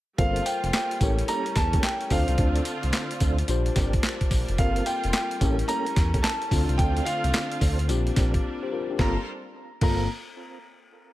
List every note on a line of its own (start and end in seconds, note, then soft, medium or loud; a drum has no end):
0.18 0.40 G1 loud
0.18 2.09 G3 medium
0.18 0.44 A#3 medium
0.18 1.00 A#3 medium
0.18 0.44 C4 medium
0.18 0.44 F4 medium
0.18 1.01 F4 medium
0.18 1.00 F4 medium
0.18 0.45 A4 loud
0.18 1.01 A4 medium
0.18 1.01 A#4 medium
0.18 1.02 C5 medium
0.18 0.47 F5 loud
0.18 kick loud
0.18 closed hi-hat medium
0.36 closed hi-hat medium
0.46 0.72 G5 loud
0.46 closed hi-hat medium
0.46 tambourine medium
0.64 0.71 F1 loud
0.64 closed hi-hat medium
0.73 1.24 G5 loud
0.73 snare loud
0.73 clap medium
0.73 closed hi-hat medium
0.73 tambourine loud
0.91 closed hi-hat medium
1.01 1.23 A1 loud
1.01 3.46 A3 medium
1.01 1.18 A#3 medium
1.01 1.18 C#4 medium
1.01 2.10 C#4 medium
1.01 2.09 E4 medium
1.01 1.18 G4 medium
1.01 2.09 G4 medium
1.01 1.18 A4 medium
1.01 2.10 A#4 medium
1.01 2.10 C#5 medium
1.01 kick loud
1.01 closed hi-hat medium
1.01 tambourine medium
1.19 closed hi-hat medium
1.28 1.46 A#3 medium
1.28 1.46 C#4 medium
1.28 1.46 G4 medium
1.28 1.46 A4 medium
1.28 1.57 A#5 loud
1.28 closed hi-hat medium
1.28 tambourine medium
1.46 closed hi-hat soft
1.55 1.78 E2 medium
1.55 1.84 A5 loud
1.55 kick loud
1.55 snare medium
1.55 closed hi-hat medium
1.55 tambourine medium
1.73 1.83 A#3 medium
1.73 1.83 C#4 medium
1.73 1.83 G4 medium
1.73 1.83 A4 medium
1.73 kick medium
1.73 closed hi-hat medium
1.83 2.12 G5 loud
1.83 snare loud
1.83 clap loud
1.83 closed hi-hat medium
1.83 tambourine loud
2.01 closed hi-hat soft
2.10 2.25 D2 medium
2.10 3.47 D3 medium
2.10 2.28 C4 medium
2.10 3.47 C4 medium
2.10 3.46 D4 medium
2.10 2.28 D4 medium
2.10 3.47 D4 medium
2.10 2.28 F4 medium
2.10 3.47 F4 medium
2.10 3.46 F4 medium
2.10 2.28 A4 medium
2.10 3.46 A4 medium
2.10 3.47 C5 medium
2.10 2.90 F5 medium
2.10 kick medium
2.10 open hi-hat medium
2.10 tambourine medium
2.28 2.36 C2 medium
2.28 closed hi-hat medium
2.38 2.60 D2 loud
2.38 2.64 C4 loud
2.38 2.64 D4 medium
2.38 2.64 F4 medium
2.38 2.65 A4 loud
2.38 kick loud
2.38 closed hi-hat medium
2.56 closed hi-hat medium
2.65 closed hi-hat medium
2.65 tambourine medium
2.83 2.91 C2 medium
2.83 closed hi-hat medium
2.93 snare loud
2.93 clap medium
2.93 closed hi-hat medium
2.93 tambourine loud
3.11 closed hi-hat medium
3.20 3.42 D2 medium
3.20 3.38 C4 medium
3.20 3.38 D4 medium
3.20 3.38 F4 medium
3.20 3.38 A4 medium
3.20 kick medium
3.20 closed hi-hat medium
3.20 tambourine medium
3.38 closed hi-hat medium
3.48 3.70 A#1 medium
3.48 6.48 G3 medium
3.48 5.39 A#3 medium
3.48 4.56 D4 medium
3.48 4.58 D4 medium
3.48 4.57 F4 medium
3.48 4.57 G4 medium
3.48 4.57 C5 medium
3.48 closed hi-hat medium
3.48 tambourine medium
3.66 closed hi-hat medium
3.76 3.98 G1 loud
3.76 3.93 C4 medium
3.76 3.93 D4 medium
3.76 3.93 G4 medium
3.76 3.94 A#4 medium
3.76 kick loud
3.76 snare medium
3.76 closed hi-hat medium
3.76 tambourine medium
3.93 kick medium
3.93 closed hi-hat medium
4.03 snare loud
4.03 clap medium
4.03 closed hi-hat medium
4.03 tambourine loud
4.21 kick medium
4.21 closed hi-hat soft
4.31 4.45 A#1 medium
4.31 kick medium
4.31 open hi-hat medium
4.31 tambourine medium
4.48 4.57 F1 loud
4.48 closed hi-hat medium
4.58 4.80 G1 loud
4.58 4.84 A#3 loud
4.58 4.85 C4 medium
4.58 5.41 C4 medium
4.58 5.40 F4 medium
4.58 4.85 F4 medium
4.58 5.41 F4 medium
4.58 4.85 A4 loud
4.58 5.42 A4 medium
4.58 5.42 A#4 medium
4.58 4.87 F5 loud
4.58 kick loud
4.58 closed hi-hat medium
4.76 closed hi-hat medium
4.86 5.12 G5 loud
4.86 closed hi-hat medium
4.86 tambourine medium
5.04 5.12 F1 loud
5.04 closed hi-hat medium
5.13 5.65 G5 loud
5.13 snare loud
5.13 clap medium
5.13 closed hi-hat medium
5.13 tambourine loud
5.31 closed hi-hat medium
5.41 5.63 A1 loud
5.41 7.87 A3 medium
5.41 5.58 A#3 medium
5.41 6.49 C#4 medium
5.41 5.58 C#4 medium
5.41 6.50 C#4 medium
5.41 6.49 E4 medium
5.41 5.59 G4 medium
5.41 6.50 G4 medium
5.41 5.59 A4 medium
5.41 6.50 A#4 medium
5.41 kick medium
5.41 closed hi-hat medium
5.41 tambourine medium
5.59 closed hi-hat medium
5.68 5.86 A#3 medium
5.68 5.86 C#4 medium
5.68 5.86 G4 medium
5.68 5.86 A4 medium
5.68 6.25 A#5 loud
5.68 closed hi-hat medium
5.68 tambourine medium
5.86 closed hi-hat soft
5.96 6.18 E2 medium
5.96 kick loud
5.96 snare medium
5.96 closed hi-hat medium
5.96 tambourine medium
6.14 6.24 A#3 medium
6.14 6.24 C#4 medium
6.14 6.24 G4 medium
6.14 6.24 A4 medium
6.14 kick medium
6.14 closed hi-hat medium
6.23 6.80 A5 loud
6.23 snare loud
6.23 clap loud
6.23 closed hi-hat medium
6.23 tambourine medium
6.42 closed hi-hat soft
6.51 6.65 D2 medium
6.51 7.88 D3 medium
6.51 7.86 C4 medium
6.51 6.69 C4 medium
6.51 7.88 C4 medium
6.51 7.86 D4 medium
6.51 6.69 D4 medium
6.51 7.88 D4 medium
6.51 7.88 F4 medium
6.51 6.69 F4 medium
6.51 7.87 F4 medium
6.51 6.69 A4 medium
6.51 7.87 A4 medium
6.51 kick medium
6.51 open hi-hat medium
6.51 tambourine medium
6.69 6.77 C2 loud
6.69 closed hi-hat medium
6.78 7.01 D2 loud
6.78 7.05 C4 medium
6.78 7.05 D4 medium
6.78 7.05 F4 medium
6.78 7.05 A4 loud
6.78 7.07 G5 loud
6.78 kick loud
6.78 closed hi-hat medium
6.97 closed hi-hat medium
7.05 7.84 F5 loud
7.05 closed hi-hat medium
7.05 tambourine medium
7.24 7.32 C2 loud
7.24 closed hi-hat medium
7.34 snare loud
7.34 clap medium
7.34 closed hi-hat medium
7.34 tambourine loud
7.51 closed hi-hat medium
7.61 7.90 D2 medium
7.61 7.79 C4 medium
7.61 7.79 D4 medium
7.61 7.79 F4 medium
7.61 7.79 A4 medium
7.61 kick medium
7.61 open hi-hat medium
7.61 tambourine medium
7.79 closed hi-hat medium
7.88 8.11 A#1 loud
7.88 8.98 G3 medium
7.88 8.98 A#3 medium
7.88 8.97 C4 medium
7.88 8.98 D4 medium
7.88 8.43 D4 medium
7.88 8.43 F4 medium
7.88 8.44 G4 medium
7.88 closed hi-hat medium
7.88 tambourine medium
8.07 closed hi-hat soft
8.16 8.38 A#1 loud
8.16 8.34 C4 medium
8.16 8.34 D4 medium
8.16 8.34 G4 medium
8.16 8.34 A#4 medium
8.16 kick loud
8.16 snare medium
8.16 closed hi-hat medium
8.16 tambourine medium
8.34 kick medium
8.34 closed hi-hat medium
8.63 8.72 G4 medium
8.63 8.72 C5 medium
8.72 8.89 F4 medium
8.72 8.89 A#4 medium
8.90 9.16 D4 medium
8.90 9.16 G4 medium
8.99 9.17 G1 loud
8.99 9.25 G3 medium
8.99 9.18 A#3 medium
8.99 9.17 C4 medium
8.99 9.18 C4 medium
8.99 9.25 D4 medium
8.99 9.17 F4 medium
8.99 9.25 F4 medium
8.99 9.18 F4 medium
8.99 9.25 A4 medium
8.99 9.17 A4 medium
8.99 9.18 A4 medium
8.99 9.25 A#4 medium
8.99 9.18 A#4 loud
8.99 9.25 C5 medium
8.99 9.18 A#5 medium
8.99 kick loud
8.99 snare medium
9.81 10.07 G1 loud
9.81 10.08 A#3 medium
9.81 10.03 C4 medium
9.81 10.08 C4 medium
9.81 10.03 F4 medium
9.81 10.08 F4 medium
9.81 10.04 A4 medium
9.81 10.08 A4 loud
9.81 10.04 A#4 loud
9.81 10.08 A#5 medium
9.81 kick loud
9.81 crash medium